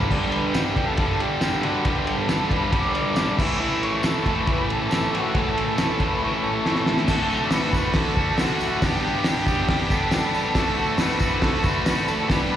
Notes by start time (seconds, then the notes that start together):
Already playing: D3 G3
0.00 floor tom
0.11 G2 D3 G3, kick, crash
0.32 B4, ride
0.53 G2 D3 G3 G4, snare, ride, tambourine
0.76 G2 D3 G3, kick, ride
0.87 A4
0.97 G2 D3 G3, kick, ride
1.20 G4, ride
1.41 G2 D3 G3, snare, ride, tambourine
1.63 G2 D3 G3 F#4, ride
1.85 G2 D3 G3 G4, kick, ride
2.07 ride
2.20 A4
2.29 G2 D3 G3, snare, ride, tambourine
2.51 G2 D3 G3 B4, kick, ride
2.73 G2 D3 G3 D5, kick, ride
2.95 ride
3.16 G2 D3 G3, snare, ride, tambourine
3.38 A2 E3 A3, kick, crash
3.59 A2 E3 A3
3.83 C#5, ride
4.03 A2 E3 A3 A4, snare, ride, tambourine
4.25 A2 E3 A3, kick, ride
4.39 B4
4.46 A2 E3 A3, kick, ride
4.70 A4, ride
4.91 A2 E3 A3, snare, ride, tambourine
5.13 A2 E3 A3 F#4, ride
5.34 A2 E3 A3, kick, ride
5.38 A4
5.58 ride
5.71 A4
5.77 A2 E3 A3, snare, ride, tambourine
6.00 A2 E3 A3, kick, ride
6.04 B4
6.22 A2 E3 A3 C#5
6.43 A4
6.65 A2 E3 A3, snare
6.76 snare
6.86 A2 E3 A3, snare
6.97 snare
7.07 D2 A2 D3 A3 F#4 A4, kick, snare, crash, tambourine
7.30 D3 A3 F#4, tambourine
7.45 D5
7.51 D2 A2 D3 A3 F#4 B4, snare, open hi-hat, tambourine
7.73 D3 A3 F#4, kick, tambourine
7.94 A4, kick, snare, open hi-hat
8.17 D3 A3 F#4, kick
8.38 A2 D3 A3 F#4, snare, open hi-hat, tambourine
8.42 F#4
8.60 tambourine
8.82 G2 D3 G3 B3 D4 G4, kick, snare, open hi-hat, tambourine
8.87 G4
9.04 G3 B3 D4 G4
9.24 G2 D3 G3 B3 D4, snare, open hi-hat, tambourine
9.30 G4
9.46 G3 B3 D4 G4, kick, tambourine
9.69 G4, kick, snare, open hi-hat
9.90 B3 D4 G4 A4, kick, tambourine
9.94 G3
10.11 G3 B3 D4, snare, open hi-hat, tambourine
10.15 G4
10.34 tambourine
10.55 D2 A2 D3 A3 A4, kick, snare, open hi-hat, tambourine
10.59 F#4
10.77 D3 A3 F#4, tambourine
10.98 D2 A2 D3 A3 B4, snare, open hi-hat, tambourine
11.02 F#4
11.19 A3 F#4, kick, tambourine
11.24 D3
11.42 A4, kick, snare, open hi-hat
11.64 A3 F#4 B4, kick, tambourine
11.69 D3
11.86 A2 D3 A3, snare, open hi-hat, tambourine
11.90 F#4
12.08 A4, tambourine
12.29 G2 D3 G3 B3 D4 G4 B4, kick, snare, open hi-hat, tambourine
12.51 B3 D4 G4